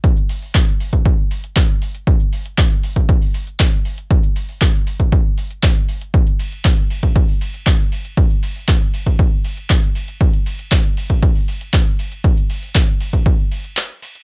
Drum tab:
RD |----------------|----------------|----------------|--x---x---x---x-|
HH |xxoox-oxx-oxx-ox|xxoxx-oxxooxx-ox|xxoox-oxx-oxx-ox|xxoxx-oxxooxx-ox|
SH |xxxxxxxxx-xxxxxx|xxxxxxxxx-xxxxxx|xxxxxxxxx-xxxxxx|xxxxxxxxx-xxxxxx|
CP |----x-------x---|----x-------x---|----x-------x---|----x-------x---|
BD |o---o--oo---o---|o---o--oo---o---|o---o--oo---o---|o---o--oo---o---|

RD |--x---x---x---x-|--x---x---x---x-|--x---x---x---x-|
HH |xxoox-oxx-oxx-ox|xxoxx-oxxooxx-ox|xxoox-oxx-oxx-ox|
SH |xxxxxxxxx-xxxxxx|xxxxxxxxx-xxxxxx|xxxxxxxxxxxxxxxx|
CP |----x-------x---|----x-------x---|----x-------x---|
BD |o---o--oo---o---|o---o--oo---o---|o---o--oo-------|